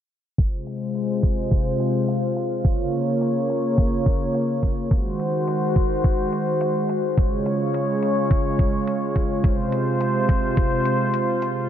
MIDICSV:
0, 0, Header, 1, 3, 480
1, 0, Start_track
1, 0, Key_signature, -4, "minor"
1, 0, Tempo, 566038
1, 326, Time_signature, 4, 2, 24, 8
1, 9916, End_track
2, 0, Start_track
2, 0, Title_t, "Analog synth pad"
2, 0, Program_c, 0, 89
2, 324, Note_on_c, 0, 65, 76
2, 325, Note_on_c, 0, 56, 74
2, 325, Note_on_c, 0, 72, 89
2, 326, Note_on_c, 0, 48, 79
2, 2226, Note_off_c, 0, 48, 0
2, 2226, Note_off_c, 0, 56, 0
2, 2226, Note_off_c, 0, 72, 0
2, 2243, Note_on_c, 0, 49, 79
2, 2243, Note_on_c, 0, 58, 72
2, 2243, Note_on_c, 0, 73, 87
2, 4130, Note_off_c, 0, 65, 0
2, 4145, Note_off_c, 0, 49, 0
2, 4145, Note_off_c, 0, 58, 0
2, 4145, Note_off_c, 0, 73, 0
2, 4164, Note_on_c, 0, 72, 92
2, 4165, Note_on_c, 0, 51, 82
2, 4165, Note_on_c, 0, 66, 76
2, 4166, Note_on_c, 0, 56, 72
2, 6066, Note_off_c, 0, 51, 0
2, 6066, Note_off_c, 0, 66, 0
2, 6066, Note_off_c, 0, 72, 0
2, 6079, Note_on_c, 0, 73, 90
2, 6080, Note_on_c, 0, 49, 80
2, 6080, Note_on_c, 0, 65, 73
2, 7983, Note_off_c, 0, 49, 0
2, 7983, Note_off_c, 0, 73, 0
2, 8005, Note_on_c, 0, 48, 83
2, 8006, Note_on_c, 0, 72, 94
2, 9892, Note_off_c, 0, 56, 0
2, 9906, Note_off_c, 0, 48, 0
2, 9906, Note_off_c, 0, 72, 0
2, 9916, Note_off_c, 0, 65, 0
2, 9916, End_track
3, 0, Start_track
3, 0, Title_t, "Drums"
3, 325, Note_on_c, 9, 36, 102
3, 325, Note_on_c, 9, 42, 77
3, 409, Note_off_c, 9, 42, 0
3, 410, Note_off_c, 9, 36, 0
3, 565, Note_on_c, 9, 42, 57
3, 650, Note_off_c, 9, 42, 0
3, 805, Note_on_c, 9, 42, 83
3, 890, Note_off_c, 9, 42, 0
3, 1045, Note_on_c, 9, 36, 90
3, 1045, Note_on_c, 9, 42, 59
3, 1130, Note_off_c, 9, 36, 0
3, 1130, Note_off_c, 9, 42, 0
3, 1285, Note_on_c, 9, 36, 100
3, 1285, Note_on_c, 9, 42, 85
3, 1370, Note_off_c, 9, 36, 0
3, 1370, Note_off_c, 9, 42, 0
3, 1526, Note_on_c, 9, 42, 63
3, 1611, Note_off_c, 9, 42, 0
3, 1765, Note_on_c, 9, 42, 86
3, 1850, Note_off_c, 9, 42, 0
3, 2005, Note_on_c, 9, 42, 62
3, 2090, Note_off_c, 9, 42, 0
3, 2245, Note_on_c, 9, 36, 109
3, 2245, Note_on_c, 9, 42, 84
3, 2330, Note_off_c, 9, 36, 0
3, 2330, Note_off_c, 9, 42, 0
3, 2485, Note_on_c, 9, 42, 56
3, 2570, Note_off_c, 9, 42, 0
3, 2725, Note_on_c, 9, 42, 84
3, 2810, Note_off_c, 9, 42, 0
3, 2965, Note_on_c, 9, 42, 62
3, 3050, Note_off_c, 9, 42, 0
3, 3205, Note_on_c, 9, 36, 106
3, 3205, Note_on_c, 9, 42, 86
3, 3290, Note_off_c, 9, 36, 0
3, 3290, Note_off_c, 9, 42, 0
3, 3445, Note_on_c, 9, 36, 98
3, 3446, Note_on_c, 9, 42, 66
3, 3530, Note_off_c, 9, 36, 0
3, 3531, Note_off_c, 9, 42, 0
3, 3685, Note_on_c, 9, 42, 88
3, 3770, Note_off_c, 9, 42, 0
3, 3925, Note_on_c, 9, 36, 54
3, 3926, Note_on_c, 9, 42, 59
3, 4010, Note_off_c, 9, 36, 0
3, 4010, Note_off_c, 9, 42, 0
3, 4165, Note_on_c, 9, 36, 105
3, 4166, Note_on_c, 9, 42, 76
3, 4250, Note_off_c, 9, 36, 0
3, 4250, Note_off_c, 9, 42, 0
3, 4406, Note_on_c, 9, 42, 61
3, 4490, Note_off_c, 9, 42, 0
3, 4645, Note_on_c, 9, 42, 81
3, 4730, Note_off_c, 9, 42, 0
3, 4885, Note_on_c, 9, 36, 97
3, 4886, Note_on_c, 9, 42, 60
3, 4970, Note_off_c, 9, 36, 0
3, 4970, Note_off_c, 9, 42, 0
3, 5125, Note_on_c, 9, 36, 115
3, 5125, Note_on_c, 9, 42, 84
3, 5210, Note_off_c, 9, 36, 0
3, 5210, Note_off_c, 9, 42, 0
3, 5365, Note_on_c, 9, 42, 61
3, 5450, Note_off_c, 9, 42, 0
3, 5605, Note_on_c, 9, 42, 86
3, 5689, Note_off_c, 9, 42, 0
3, 5845, Note_on_c, 9, 42, 60
3, 5930, Note_off_c, 9, 42, 0
3, 6085, Note_on_c, 9, 36, 111
3, 6086, Note_on_c, 9, 42, 76
3, 6170, Note_off_c, 9, 36, 0
3, 6171, Note_off_c, 9, 42, 0
3, 6325, Note_on_c, 9, 42, 55
3, 6410, Note_off_c, 9, 42, 0
3, 6566, Note_on_c, 9, 42, 78
3, 6651, Note_off_c, 9, 42, 0
3, 6806, Note_on_c, 9, 42, 58
3, 6891, Note_off_c, 9, 42, 0
3, 7046, Note_on_c, 9, 36, 111
3, 7046, Note_on_c, 9, 42, 76
3, 7130, Note_off_c, 9, 36, 0
3, 7130, Note_off_c, 9, 42, 0
3, 7286, Note_on_c, 9, 36, 97
3, 7286, Note_on_c, 9, 42, 59
3, 7371, Note_off_c, 9, 36, 0
3, 7371, Note_off_c, 9, 42, 0
3, 7526, Note_on_c, 9, 42, 82
3, 7610, Note_off_c, 9, 42, 0
3, 7766, Note_on_c, 9, 36, 59
3, 7766, Note_on_c, 9, 42, 58
3, 7850, Note_off_c, 9, 36, 0
3, 7851, Note_off_c, 9, 42, 0
3, 8005, Note_on_c, 9, 36, 104
3, 8006, Note_on_c, 9, 42, 74
3, 8090, Note_off_c, 9, 36, 0
3, 8091, Note_off_c, 9, 42, 0
3, 8245, Note_on_c, 9, 42, 55
3, 8330, Note_off_c, 9, 42, 0
3, 8485, Note_on_c, 9, 42, 77
3, 8570, Note_off_c, 9, 42, 0
3, 8725, Note_on_c, 9, 42, 55
3, 8726, Note_on_c, 9, 36, 93
3, 8810, Note_off_c, 9, 36, 0
3, 8810, Note_off_c, 9, 42, 0
3, 8965, Note_on_c, 9, 36, 112
3, 8965, Note_on_c, 9, 42, 81
3, 9050, Note_off_c, 9, 36, 0
3, 9050, Note_off_c, 9, 42, 0
3, 9205, Note_on_c, 9, 42, 62
3, 9289, Note_off_c, 9, 42, 0
3, 9445, Note_on_c, 9, 42, 80
3, 9529, Note_off_c, 9, 42, 0
3, 9685, Note_on_c, 9, 42, 56
3, 9770, Note_off_c, 9, 42, 0
3, 9916, End_track
0, 0, End_of_file